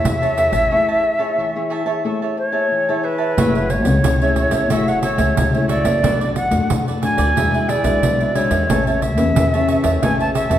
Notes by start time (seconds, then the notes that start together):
Already playing: E4 G#4 C#5 E5 A5
0.05 E2 E3, pandeiro
0.22 E4 G#4 C#5 E5 A5, pandeiro
0.37 G#4 C#5 E5 A5, pandeiro
0.52 A1 C#5 E5 A5, pandeiro
0.71 A3 E4 G#4 C#5 E5 A5
0.88 C#5 E5 A5
1.03 muted cavaquinho stroke
1.19 E4 G#4 C#5 E5 A5
1.38 E3 C#5 E5 A5
1.56 E4 G#4 C#5
1.70 G#4 C#5 E5 A5
1.86 E4 G#4 C#5 E5 A5
2.04 A3 E4 G#4 C#5 E5 A5
2.22 C#5 E5 A5
2.37 C#5, muted cavaquinho stroke
2.52 E4 G#4 C#5 E5 A5
2.71 E3
2.89 E4 G#4 C#5 E5 A5
3.03 G#4 B4 C#5 E5 A5
3.18 C#5 E5 A5
3.37 F#1 F#3 A3 E4 F#4 G#4 A4 C#5 E5, pandeiro
3.55 A4 C#5 E5, pandeiro
3.70 C#5, muted cavaquinho stroke, pandeiro
3.85 C#2 A3 E4 G#4, muted cavaquinho stroke, pandeiro
4.04 C#2 C#3, pandeiro
4.22 A3 E4 G#4 A4 C#5 E5, pandeiro
4.36 F#4 A4 C#5 E5, pandeiro
4.51 C#2 A4 C#5 E5, pandeiro
4.70 F#1 F#3 A3 E4 F#4 G#4 A4 C#5 E5, pandeiro
4.88 A4 C#5 E5 F#5, pandeiro
5.02 F#4 A4 C#5 E5, pandeiro
5.18 C#2 A3 E4 G#4 A4 C#5 E5, pandeiro
5.37 C#2 C#3, pandeiro
5.54 A3 E4 G#4 A4 C#5 E5, pandeiro
5.68 F#4 A4 C#5 D5 E5, pandeiro
5.84 F#1 A4 C#5 E5, pandeiro
6.03 B1 B2 A3 D4 F#4 A4 B4 D5, pandeiro
6.20 A4 B4 D5, pandeiro
6.35 F#5, muted cavaquinho stroke, pandeiro
6.51 F#2 A3 D4 F#4, muted cavaquinho stroke, pandeiro
6.70 F#2 F#3, pandeiro
6.87 A4 B4 D5, pandeiro
7.02 A3 D4 F#4 A4 B4 D5 G#5, pandeiro
7.17 D2 A4 B4 D5, pandeiro
7.36 E2 E3 G#3 D4 F#4 G#4 B4 E5, pandeiro
7.53 G#4 B4 E5, pandeiro
7.68 D4 G#4 B4 D5 E5, pandeiro
7.83 B1 G#3 D4 F#4 G#4 B4 E5, pandeiro
8.03 B1 B2, pandeiro
8.20 G#4 B4 E5, pandeiro
8.35 G#3 D4 F#4 G#4 B4 C#5 E5, pandeiro
8.50 E2 G#4 B4 E5, pandeiro
8.69 A1 A3 C#4 G#4 B4 C#5 E5 A5, pandeiro
8.87 C#5 E5 A5, pandeiro
9.01 E5, muted cavaquinho stroke, pandeiro
9.17 E2 C#4 G#4 B4, muted cavaquinho stroke, pandeiro
9.36 E2 E3, pandeiro
9.53 C#4 G#4 B4 C#5 E5 A5, pandeiro
9.67 G#4 C#5 E5 A5, pandeiro
9.83 E2 C#5 E5 A5, pandeiro
10.02 A1 A3 C#4 G#4 B4 C#5 E5 G#5 A5, pandeiro
10.19 C#5 E5 A5, pandeiro
10.34 G#4 C#5 E5 A5, pandeiro
10.50 E2 C#4 G#4 B4 C#5 E5 A5, pandeiro